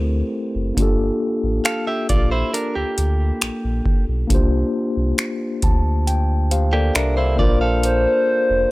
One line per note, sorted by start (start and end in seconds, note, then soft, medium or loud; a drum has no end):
0.00 0.23 D2 medium
0.00 0.77 A3 medium
0.00 0.77 C4 medium
0.00 0.78 E4 medium
0.00 0.78 G4 medium
0.00 0.79 A#4 soft
0.00 0.82 C5 medium
0.55 0.72 F#1 medium
0.75 1.11 G1 loud
0.75 4.25 A#3 medium
0.75 4.26 D4 medium
0.75 4.27 F4 medium
0.75 kick loud
0.75 closed hi-hat medium
0.80 4.28 G4 medium
0.80 4.29 A4 medium
1.43 1.60 A1 medium
1.65 1.87 A4 medium
1.65 1.86 F5 medium
1.65 finger snap loud
1.65 closed hi-hat medium
1.87 2.09 G4 medium
1.87 2.08 E5 medium
2.09 2.44 A#1 medium
2.09 2.31 F4 medium
2.09 2.30 D5 medium
2.09 kick medium
2.09 closed hi-hat medium
2.31 2.53 E4 medium
2.31 2.52 C5 medium
2.54 2.75 D4 medium
2.54 2.75 A#4 medium
2.54 closed hi-hat medium
2.75 2.85 D2 soft
2.75 4.04 A#3 medium
2.75 4.04 G4 medium
2.98 3.32 D2 medium
2.98 closed hi-hat medium
3.41 3.51 A#1 soft
3.41 finger snap loud
3.41 closed hi-hat medium
3.64 3.81 A#1 medium
3.86 kick loud
4.08 4.25 B1 medium
4.27 4.64 C2 loud
4.27 7.34 A#3 medium
4.27 7.34 D4 medium
4.27 7.35 F4 medium
4.27 kick loud
4.27 closed hi-hat medium
4.33 6.04 G4 medium
4.33 6.05 C5 medium
4.97 5.13 C2 medium
5.18 finger snap loud
5.18 closed hi-hat medium
5.62 6.91 D2 medium
5.62 6.04 A5 medium
5.62 kick loud
5.62 closed hi-hat medium
6.07 6.48 G5 medium
6.07 closed hi-hat medium
6.51 6.72 G4 medium
6.51 6.72 C5 medium
6.51 6.92 F5 medium
6.51 closed hi-hat medium
6.73 6.94 A#3 medium
6.73 6.94 G4 medium
6.73 6.94 A4 medium
6.73 6.94 D5 medium
6.95 7.41 C2 medium
6.95 7.16 D4 medium
6.95 7.16 A#4 medium
6.95 7.36 D5 medium
6.95 7.16 E5 medium
6.95 finger snap loud
6.95 closed hi-hat medium
7.17 7.38 E4 medium
7.17 7.38 C5 medium
7.17 7.42 C5 medium
7.17 7.59 F5 medium
7.36 8.07 A#1 loud
7.36 8.71 A#3 medium
7.36 8.71 D4 medium
7.36 8.71 F4 medium
7.36 7.60 D5 medium
7.36 7.80 D5 medium
7.36 kick loud
7.40 7.60 F4 medium
7.40 8.71 A#4 medium
7.40 8.71 C5 medium
7.61 8.71 A4 medium
7.61 8.71 F5 medium
7.83 8.71 C5 loud
7.83 closed hi-hat medium
8.50 8.66 F1 medium